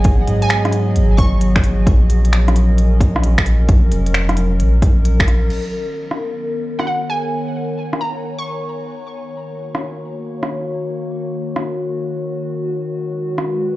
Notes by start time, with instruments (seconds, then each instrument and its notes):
Already playing: ambient pad F#3 B3 G#4 D#5
0.04 sub bass G#1, kick, closed hi-hat
0.27 sub bass G#2, open hi-hat
0.42 synth pluck G#5, closed hi-hat
0.49 synth pluck G#5, finger snap, closed hi-hat
0.65 cross-stick, closed hi-hat
0.73 open hi-hat
0.96 sub bass G#1, closed hi-hat
1.17 synth pluck C#6, kick, open hi-hat
1.41 closed hi-hat
1.56 finger snap, kick
1.64 open hi-hat
1.86 sub bass A#1, kick, closed hi-hat
2.03 ambient pad C#4 A#4
2.10 open hi-hat
2.25 closed hi-hat
2.33 finger snap, closed hi-hat
2.48 cross-stick, closed hi-hat
2.56 open hi-hat
2.78 closed hi-hat
3.01 kick, open hi-hat
3.16 cross-stick
3.23 closed hi-hat
3.38 finger snap, kick
3.46 sub bass A#1, open hi-hat
3.69 sub bass A#1, kick, closed hi-hat
3.91 sub bass F1, open hi-hat
4.06 closed hi-hat
4.14 finger snap, closed hi-hat
4.29 cross-stick, closed hi-hat
4.37 open hi-hat
4.59 sub bass A#1, closed hi-hat
4.82 kick, open hi-hat
5.05 closed hi-hat
5.20 sub bass A#1, finger snap, kick
5.28 cross-stick, open hi-hat
5.50 ambient pad D#3, crash
5.73 ambient pad B3
6.11 cross-stick
6.50 ambient pad C#5
6.79 synth pluck F#5, cross-stick
6.87 synth pluck F#5
7.10 synth pluck G#5
7.93 cross-stick
8.01 synth pluck A#5
8.39 synth pluck C#6
9.33 ambient pad A#3
9.38 ambient pad F#4
9.75 cross-stick
10.43 cross-stick
11.56 cross-stick
12.96 ambient pad G#3
13.18 ambient pad B4
13.38 cross-stick